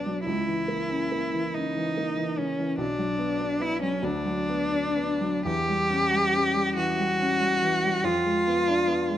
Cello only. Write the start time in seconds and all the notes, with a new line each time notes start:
Already playing: D4
0.26 E4
1.54 D#4
2.38 C#4
2.80 D4
3.61 E4
3.83 C#4
4.04 D4
5.46 G4
6.76 F#4
8.04 F4